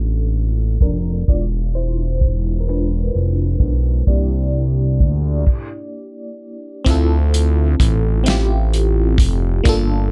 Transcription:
Already playing: A1 A3 A#3 D4 F4 A4
0.36 closed hi-hat
0.81 F1 D4 A#4, kick, closed hi-hat
1.28 E1 G#3 D4 F4 D5, kick, closed hi-hat
1.75 E4 C5, closed hi-hat
2.21 kick, closed hi-hat
2.60 A#4
2.67 G#3 D4 F4 B4, finger snap, closed hi-hat
3.14 F1, closed hi-hat
3.60 B1, kick, closed hi-hat
4.07 C2 A#3 D4 E4 G4 D5, kick, closed hi-hat
4.54 closed hi-hat
5.00 D2, kick, closed hi-hat
5.46 kick, crash
6.85 D2 C4 E4 F4, kick, closed hi-hat
6.91 A4
7.34 closed hi-hat
7.80 A1, kick, closed hi-hat
8.24 C4 E4, closed hi-hat
8.28 F4 G4, snare
8.74 closed hi-hat
9.18 F1, kick, closed hi-hat
9.64 G1 A#3 D4 F4, kick, closed hi-hat
9.69 A4

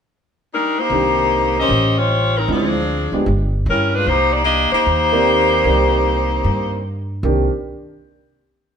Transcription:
0.53 G3 D4 D#4 A#4
0.79 A#3 D#4 G4 C5
0.90 C2 D#3 A#3 C4 D4 G4
1.60 C#4 G4 C5 D#5
1.69 A1
1.98 G3 F4 C5 C#5
2.38 G3 C4 D#4 A#4
2.48 D2 F3 G#3 C4 D4 E4
2.52 F3 C4 D4 G#4
3.12 D2 F3 G#3 B3 D4 G4
3.26 G1
3.66 G2 G3 C#4 E4 A#4
3.95 G#3 D4 F4 B4
4.07 C2 A#3 D#4 G4 C5
4.32 A#3 D#4 G4 D5
4.44 A#3 D4 G4 D#5
4.72 A#3 D#4 G4 C5, muted upright bass stroke
4.86 D#2
5.12 D#3 A#3 C4 G4 D5
5.64 C2 D#3 A#3 C4 G4 D5
6.44 G2
7.23 C2 D#3 A#3 C4 D4 G4

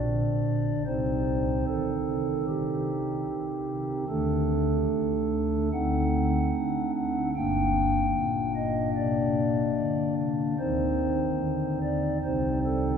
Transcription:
Already playing: D4 D5
0.05 D3
0.86 C2 C3 C4 D#4 C5
1.67 D#3 A4
2.48 C3 G4
3.29 D#3
4.08 D2 D3 A3 D4 A4
4.89 D2
5.73 D2 D3 C4 D#4 F#5
6.56 D4
6.96 F#5
7.36 G1 G2 A#3 D4 G5
8.16 A#2
8.56 D#5
8.96 C3 D5
9.77 D3
10.59 D#2 D#3 C4 D#4 C5
11.41 D3
11.82 D5
12.24 C2 C3 C4 D#4 C5
12.65 A4

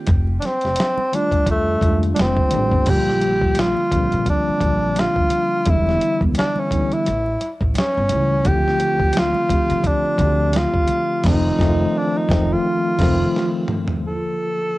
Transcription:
0.07 F1, kick, closed hi-hat, muted conga, low conga
0.27 muted conga
0.40 D4, closed hi-hat, high conga
0.45 C4, snare
0.61 F1, snare, closed hi-hat
0.76 closed hi-hat, muted conga
0.80 snare
0.98 muted conga, high conga
1.12 D#3 G3 A3 D4 F4, closed hi-hat, low conga
1.31 kick, closed hi-hat
1.46 F2 A3, kick, closed hi-hat, muted conga
1.81 F2 D#3 G3 G#3 D4 F4, kick, closed hi-hat
1.90 A3
2.03 closed hi-hat
2.14 D4, closed hi-hat, muted conga, high conga
2.19 F1 C4, snare
2.36 kick, muted conga
2.51 A1 D#3 G3 A3 D4, closed hi-hat, high conga, low conga
2.55 G4
2.72 G1, kick
2.86 A#1 D3 F3 G3 A#3 F4 G4, kick, closed hi-hat, crash, muted conga, low conga
3.07 snare, muted conga
3.21 closed hi-hat, high conga
3.42 kick
3.55 closed hi-hat, muted conga
3.59 F4, snare
3.77 high conga
3.92 A#1 D3 F3 G3 A#3 C4, kick, closed hi-hat, low conga
4.12 A#2, closed hi-hat
4.26 D4, kick, closed hi-hat
4.49 muted upright bass stroke
4.61 A#1 D3 F3 G3 A#3 D4, kick, closed hi-hat, high conga
4.96 F4, snare, closed hi-hat, high conga
5.16 kick, muted conga
5.30 closed hi-hat, high conga, low conga
5.66 E1 D3 E3 G3 B3, kick, closed hi-hat, low conga
5.70 E4
5.87 snare, muted conga
6.01 closed hi-hat, high conga
6.21 E1, kick
6.35 D4, closed hi-hat, muted conga
6.39 snare
6.56 C#4, muted conga, high conga
6.71 D3 E3 G3 B3 E4, kick, closed hi-hat, low conga
6.92 E4, closed hi-hat
7.06 A1, closed hi-hat, muted conga
7.26 muted conga
7.41 closed hi-hat, high conga
7.61 A1, kick
7.74 C#4, closed hi-hat, muted conga, high conga
7.78 snare
7.95 G1, muted conga
8.09 C#2 C#3 E3 G3 A3, closed hi-hat, high conga, low conga
8.13 E4
8.45 D2 D3 F3 A3 C4 E4 G4, kick, closed hi-hat, low conga
8.55 F4
8.68 snare
8.80 closed hi-hat, high conga
9.00 kick
9.13 closed hi-hat, muted conga
9.17 F4, snare
9.34 muted conga, high conga
9.49 D2 D3 F3 A3 C4 G4, kick, closed hi-hat, low conga
9.70 D3, closed hi-hat
9.84 D4, kick, closed hi-hat, muted conga
10.05 muted upright bass stroke, muted conga
10.18 D2 D3 F3 A3 C4, kick, closed hi-hat, high conga
10.23 G4
10.53 F4, snare, closed hi-hat, muted conga, high conga
10.74 kick, muted conga
10.88 closed hi-hat, high conga, low conga
11.24 F1 D#3 F3 A3 C4 D#4, kick, snare, crash
11.33 F4
11.59 F1 D#3 F3 A3 C4, kick, snare
11.68 F4
11.98 D4
12.17 D#4
12.29 F1 D#3 F3 A3 C4, kick, snare
12.52 F4
12.98 F1 D#3 F3 A3 C4, kick, snare, crash
13.36 snare
13.68 mid tom
13.88 floor tom
14.02 D3 F3
14.06 A#3 E4 A4
14.14 F4

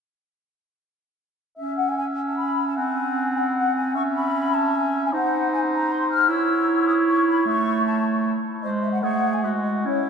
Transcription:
1.57 C#4 E5
1.77 F#5
1.89 G#5
1.97 G#5
2.28 A5
2.37 B5
2.68 A5
2.77 C4 F#5 G#5
3.37 F#5
3.56 F#5
3.75 G#5
3.95 C#4 E5 C#6
4.14 B5
4.53 A5
4.74 G#5
5.05 G#5
5.13 D#4 C5 F#5
5.53 G#5
5.73 A#5
5.91 C6
6.10 F6
6.28 E4 C#5 E6
6.87 D#6
7.07 C#6
7.27 B5
7.45 A3 C#6
7.85 A5
8.63 G#3 C5 D#5
8.82 E5
8.93 F#5
9.02 A3 G#4 F#5
9.33 G#5
9.42 G#3 F#4 E5
9.63 D#5
9.84 C#4 E4 C#5

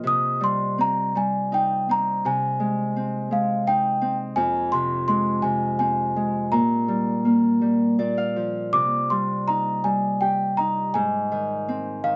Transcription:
Already playing: A#2 F3 F4 D#5 F5 G5
0.04 C3 D#6
0.41 G3 C6
0.78 C4 A#5
1.15 G3 G#5
1.52 D#4 G5
1.89 C4 A#5
2.25 C3 G#5
2.60 G#3
2.96 C4
3.31 G#3 F5
3.67 D#4 G5
4.01 C4
4.36 F2 G#5
4.72 C3 C6
5.08 G#3 C6
5.42 C3 G#5
5.79 C4 G#5
6.16 G#3
6.52 A#2 A#5
6.88 G3
7.25 A#3
7.61 G3
7.99 A#2 D5
8.18 F5
8.36 F3
8.73 C3 D6
9.10 G3 C6
9.48 D#4 A#5
9.84 G3 G#5
10.21 G4 G5
10.57 D#4 A#5
10.94 G#2 G#5
11.32 D#3
11.68 C4
12.04 D#3 F5

